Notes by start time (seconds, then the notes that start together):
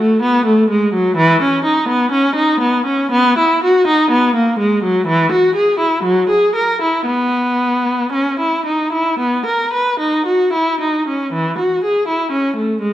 0.00 A3
0.22 B3
0.46 A3
0.70 G#3
0.94 F#3
1.17 E3
1.42 C#4
1.65 D#4
1.89 B3
2.12 C#4
2.36 D#4
2.60 B3
2.86 C#4
3.12 B3
3.38 E4
3.64 F#4
3.87 D#4
4.11 B3
4.36 A#3
4.59 G#3
4.84 F#3
5.07 E3
5.32 F#4
5.56 G#4
5.79 E4
6.03 F#3
6.29 G#4
6.55 A#4
6.82 E4
7.06 B3
8.13 C#4
8.40 E4
8.66 D#4
8.93 E4
9.19 B3
9.46 A#4
9.73 B4
10.00 D#4
10.26 F#4
10.53 E4
10.81 D#4
11.08 C#4
11.33 E3
11.59 F#4
11.85 G#4
12.08 E4
12.32 C#4
12.56 A3
12.81 G#3